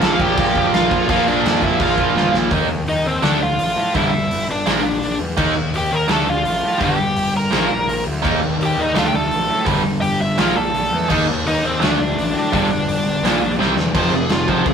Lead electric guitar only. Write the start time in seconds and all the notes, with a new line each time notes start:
0.03 A4 A5
0.12 F5
0.21 G4 G5
0.74 F4 F5
1.10 F4 F5
1.28 D4 D5
1.63 E4 E5
1.80 F4 F5
2.89 D#4 D#5
3.06 C4 C5
3.23 D4 D5
3.42 F4 F5
3.96 E4 E5
4.51 D4 D5
5.76 G4 G5
5.92 A#4 A#5
6.11 A4 A5
6.29 F4 F5
6.83 G4 G5
7.37 A#4 A#5
8.63 G4 G5
8.80 D#4 D#5
8.98 F4 F5
9.07 G5
9.15 A4 A5
10.01 G4 G5
10.21 E4 E5
10.40 F4 F5
10.56 A4 A5
11.47 D#4 D#5
11.66 C4 C5
11.81 D4 D5
13.97 C5
14.15 G#4
14.31 F4
14.49 C5
14.67 G#4